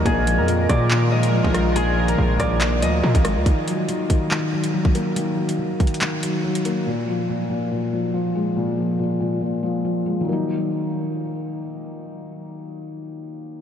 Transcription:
<<
  \new Staff \with { instrumentName = "Harp" } { \time 4/4 \key ees \minor \tempo 4 = 141 aes'8. bes'8. d''4 ees''4. | aes'8. bes'8. d''4 ees''4. | r1 | r1 |
r1 | r1 | r1 | r1 | }
  \new Staff \with { instrumentName = "Analog synth pad" } { \time 4/4 \key ees \minor <ees aes f' bes'>1~ | <ees aes f' bes'>1 | r1 | r1 |
r1 | r1 | r1 | r1 | }
  \new Staff \with { instrumentName = "Felt piano" } { \clef bass \time 4/4 \key ees \minor bes,8 f8 bes,8 bes,8 bes,8 f8 f8 aes8 | bes,8 f8 bes,8 bes,8 bes,8 f8 f8 aes8 | ees8 ges8 ees8 ees8 ees8 ges8 ges8 bes8 | ees8 ges8 ees8 ees8 ees8 ges8 ges8 bes8 |
bes,8 f8 bes,8 bes,8 bes,8 f8 f8 aes8 | bes,8 f8 bes,8 bes,8 bes,8 f8 f8 aes8 | <ees ges bes ees'>1~ | <ees ges bes ees'>1 | }
  \new Staff \with { instrumentName = "808-style bass" } { \clef bass \time 4/4 \key ees \minor bes,,8. f,8. bes,4.~ bes,16 bes,,8.~ | bes,,4 bes,,8 bes,,4 d,8 bes,16 aes,,8 d,16 | r1 | r1 |
r1 | r1 | r1 | r1 | }
  \new DrumStaff \with { instrumentName = "Drums" } \drummode { \time 4/4 <hh bd>8 hh8 hh8 <hh bd ss>8 hc8. hh16 r16 bd16 <hh ss>8 | hh8. hh16 r8 <hh bd ss>8 <hc hh>8 hh8 r16 <hh bd>16 <hh ss>8 | <hh bd>8 hh8 hh8 <hh bd>8 hc8. hh16 r16 bd16 hh8 | hh8. hh16 \tuplet 3/2 { r16 r16 r16 <hh bd>16 hh16 hh16 } <hc hh>8 hh8 r16 hh16 hh8 |
r4 r4 r4 r4 | r4 r4 r4 r4 | r4 r4 r4 r4 | r4 r4 r4 r4 | }
>>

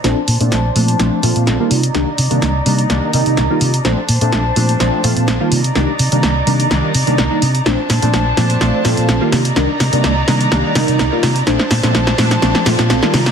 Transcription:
<<
  \new Staff \with { instrumentName = "Violin section" } { \time 4/4 \key bes \major \tempo 4 = 126 <d' c'' a''>2.~ <d' c'' a''>8 <ees' d'' bes''>8~ | <ees' d'' bes''>1 | <d' c'' a''>2.~ <d' c'' a''>8 <ees' d'' bes''>8~ | <ees' d'' bes''>1 |
<d' c'' a''>2.~ <d' c'' a''>8 <ees' d'' bes''>8~ | <ees' d'' bes''>1 | <d' c'' a''>2.~ <d' c'' a''>8 <ees' d'' bes''>8 | }
  \new Staff \with { instrumentName = "Analog polysynth" } { \time 4/4 \key bes \major <f a c' d'>16 r8 <f a c' d'>8 r16 <f a c' d'>8 <f a c' d'>8 <f a c' f'>8. <ees g bes f'>8 r16 | <ees g bes d'>16 r8 <ees g bes d'>8 r16 <ees g bes d'>8 <ees g bes d'>8 <ees g bes ees'>8. <ees g bes f'>8 r16 | <f a c' d'>16 r8 <f a c' d'>8 r16 <f a c' d'>8 <f a c' d'>8 <f a c' f'>8. <ees g bes f'>8 r16 | <ees g bes d'>16 r8 <ees g bes d'>8 r16 <ees g bes d'>8 <ees g bes d'>8 r16 <ees g bes d'>8 <ees g bes d'>16 r8 |
<f a c' d'>16 r8 <f a c' d'>8 r16 <f a c' d'>8 <f a c' d'>8 <f a c' f'>8. <ees g bes f'>8 r16 | <ees g bes d'>16 r8 <ees g bes d'>8 r16 <ees g bes d'>8 <ees g bes d'>8 <ees g bes ees'>8. <ees g bes f'>8 r16 | <f a c' d'>16 r8 <f a c' d'>8 r16 <f a c' d'>8 <f a c' d'>8 <f a c' f'>8. <ees g bes f'>8 r16 | }
  \new Staff \with { instrumentName = "Fingered electric bass" } { \clef bass \time 4/4 \key bes \major bes,,16 r16 bes,16 bes,16 bes,,16 r16 bes,16 r16 bes,,16 r16 bes,16 bes,16 bes,,16 r16 c16 r16 | c,16 r16 c16 c16 c,16 r16 c16 r16 c,16 r16 c16 c16 c,16 r16 c16 r16 | bes,,16 r16 bes,16 bes,16 bes,,16 r16 bes,16 r16 bes,,16 r16 bes,16 bes,16 bes,,16 r16 c16 r16 | c,16 r16 c16 c16 c,16 r16 c16 r16 c,16 r16 c16 c16 c,16 r16 c16 r16 |
bes,,16 r16 bes,16 bes,16 bes,,16 r16 bes,16 r16 bes,,16 r16 bes,16 bes,16 bes,,16 r16 c16 r16 | c,16 r16 c16 c16 c,16 r16 c16 r16 c,16 r16 c16 c16 c,16 r16 c16 r16 | bes,,16 r16 bes,16 bes,16 bes,,16 r16 bes,16 r16 bes,,16 r16 bes,16 bes,16 bes,,16 r16 c16 r16 | }
  \new DrumStaff \with { instrumentName = "Drums" } \drummode { \time 4/4 <hh sn>8 hho16 hh16 <hh sn>8 hho16 hh16 <hh sn>8 hho16 hh16 <hh sn>8 hho16 hh16 | <hh sn>8 hho16 hh16 <hh sn>8 hho16 hh16 <hh sn>8 hho16 hh16 <hh sn>8 hho16 hh16 | <hh sn>8 hho16 hh16 <hh sn>8 hho16 hh16 <hh sn>8 hho16 hh16 <hh sn>8 hho16 hh16 | <hh sn>8 hho16 hh16 <hh sn>8 hho16 hh16 <hh sn>8 hho16 hh16 <hh sn>8 hho16 hh16 |
<hh sn>8 <hho sn>16 hh16 <hh sn>8 <hho sn>16 hh16 <hh sn>8 <hho sn>16 hh16 <hh sn>8 <hho sn>16 hh16 | <hh sn>8 <hho sn>16 hh16 <hh sn>8 <hho sn>16 hh16 <hh sn>8 <hho sn>16 hh16 <hh sn>8 <hho sn>16 hh16 | <hh sn>16 sn16 <hho sn>16 <hh sn>16 <hh sn>16 sn16 <hho sn>16 <hh sn>16 <hh sn>16 sn16 <hho sn>16 <hh sn>16 <hh sn>16 sn16 <hho sn>16 <hh sn>16 | }
>>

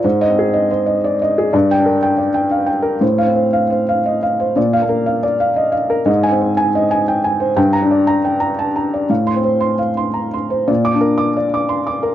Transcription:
<<
  \new Staff \with { instrumentName = "Felt piano" } { \time 3/4 \key bes \major \tempo 4 = 119 << { \tuplet 3/2 { r8 ees''4 } r2 | \tuplet 3/2 { r8 g''4 } r2 | \tuplet 3/2 { r8 f''4 } r2 | \tuplet 3/2 { r8 f''4 } r2 |
\tuplet 3/2 { r8 aes''4 } r2 | \tuplet 3/2 { r8 bes''4 } r2 | \tuplet 3/2 { r8 c'''4 } r2 | \tuplet 3/2 { r8 d'''4 } r2 | } \\ { \tuplet 3/2 { c''4 aes'8 ees''8 c''8 ees''8 d''8 ees''8 aes'8 } | \tuplet 3/2 { d''4 bes'8 g''8 d''8 g''8 f''8 g''8 bes'8 } | \tuplet 3/2 { c''4 c''8 f''8 c''8 f''8 ees''8 f''8 c''8 } | \tuplet 3/2 { d''4 bes'8 f''8 d''8 f''8 ees''8 f''8 bes'8 } |
\tuplet 3/2 { ees''4 c''8 aes''8 ees''8 aes''8 g''8 aes''8 c''8 } | \tuplet 3/2 { g''4 d''8 bes''8 g''8 bes''8 a''8 bes''8 d''8 } | \tuplet 3/2 { f''4 c''8 c'''8 f''8 c'''8 bes''8 c'''8 c''8 } | \tuplet 3/2 { d''4 bes'8 d'''8 d''8 d'''8 c'''8 d'''8 bes'8 } | } >> }
  \new Staff \with { instrumentName = "Felt piano" } { \clef bass \time 3/4 \key bes \major aes,8 c'4 r4. | g,8 d'4 r4. | a,8 c'4 r4. | bes,8 bes4 r4. |
aes,8 c'4 r4. | g,8 d'4 r4. | a,8 c'4 r4. | bes,8 d'4 r4. | }
>>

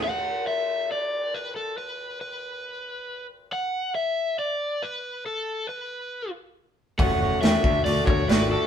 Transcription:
<<
  \new Staff \with { instrumentName = "String machine" } { \time 4/4 \key d \lydian \tempo 4 = 138 << { r1 | r1 | r1 | r1 |
<cis'' cis'''>4. <d'' d'''>2~ <d'' d'''>8 | } \\ { r1 | r1 | r1 | r1 |
<a' fis''>1 | } >> }
  \new Staff \with { instrumentName = "Overdriven electric guitar" } { \time 4/4 \key d \lydian fis''4 e''4 d''4 b'8 a'8 | b'4 b'2~ b'8 r8 | fis''4 e''4 d''4 b'4 | a'4 b'4. r4. |
fis''4 e''4 d''8 cis''8 b'8 a'8 | }
  \new Staff \with { instrumentName = "Clean electric guitar" } { \time 4/4 \key d \lydian r1 | r1 | r1 | r1 |
<a cis' fis'>8 <cis' fis'>8 <a cis' fis'>8 <a d' fis'>8 <a d' fis'>8 <d' fis'>8 <a d' fis'>8 <d' fis'>8 | }
  \new Staff \with { instrumentName = "Picked electric bass" } { \clef bass \time 4/4 \key d \lydian r1 | r1 | r1 | r1 |
fis,,8 fis,,8 e,8 d,8 d,8 d,8 gis,,4 | }
  \new DrumStaff \with { instrumentName = "Drums" } \drummode { \time 4/4 r4 r4 r4 r4 | r4 r4 r4 r4 | r4 r4 r4 r4 | r4 r4 r4 r4 |
<hho bd>4 <hho sn>8 bd8 hho8 bd8 <hho sn>4 | }
>>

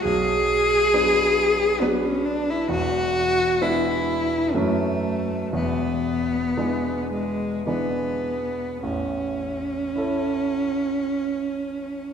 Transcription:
<<
  \new Staff \with { instrumentName = "Cello" } { \time 3/4 \key a \major \tempo 4 = 59 gis'2 b16 cis'16 d'16 e'16 | fis'4 e'4 a4 | b4. gis8 b4 | cis'2. | }
  \new Staff \with { instrumentName = "Grand piano" } { \time 3/4 \key a \major r2. | r2. | r2. | r4 <e' a' cis''>2 | }
  \new Staff \with { instrumentName = "Grand piano" } { \clef bass \time 3/4 \key a \major b,,4 <fis b d'>4 <fis b d'>4 | <e,, e,>4 <gis b d'>4 <fis, e a cis'>4 | <e,, e,>4 <e gis d'>4 <e gis d'>4 | <a,, e,>2. | }
>>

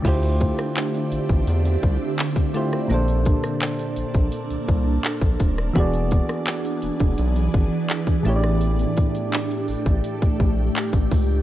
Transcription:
<<
  \new Staff \with { instrumentName = "Synth keys" } { \time 4/4 \key d \minor \tempo 4 = 84 <d a e' f' g' c''>2.~ <d a e' f' g' c''>8 <d a e' f' g' c''>8 | <bes, bes d' a' c''>1 | <e b fis' gis' d''>2.~ <e b fis' gis' d''>8 <a, a e' g' cis'' d''>8~ | <a, a e' g' cis'' d''>2.~ <a, a e' g' cis'' d''>8 r8 | }
  \new Staff \with { instrumentName = "Ambient pad" } { \time 4/4 \key d \minor <d c' d' g' e''>1 | <bes d' a'>1 | <e b gis'>2.~ <e b gis'>8 <a g'>8~ | <a g'>1 | }
  \new Staff \with { instrumentName = "Analog synth bass" } { \clef bass \time 4/4 \key d \minor d,8. r8. a,,16 a,,16 e,8 c,16 r4 r16 | bes,,8. r8. bes,,16 bes,,16 r16 c,16 c,8 r16 bes,,16 ees,,8 | e,,8. r8. e,,16 e,,16 b,,8 gis,,16 r8. a,,8~ | a,,8 r4 a,,16 a,,16 r16 bes,,16 bes,,8 r16 a,,16 cis,8 | }
  \new DrumStaff \with { instrumentName = "Drums" } \drummode { \time 4/4 <cymc hh bd>16 hh16 <hh bd>16 <hh ss>16 <hc hh>16 hh16 hh16 <hh bd>16 hh16 hh16 bd8 <hc hh>16 <hh bd>16 hh16 ss16 | hh16 hh16 <hh bd>16 <hh ss>16 <hc hh>16 hh16 hh16 <hh bd>16 hh16 hh16 bd8 <hc hh>16 <hh bd>16 <hh bd>16 ss16 | <hh bd>16 hh16 <hh bd>16 <hh ss>16 <hc hh>16 hh16 hh16 <hh bd>16 hh16 hh16 bd8 <hc hh>16 <hh bd>16 hh16 ss16 | hh16 hh16 <hh bd>16 hh16 <hc hh>16 hh16 hho16 <hh bd>16 hh16 <hh bd>16 bd8 <hc hh>16 <hh bd>16 <hho bd>8 | }
>>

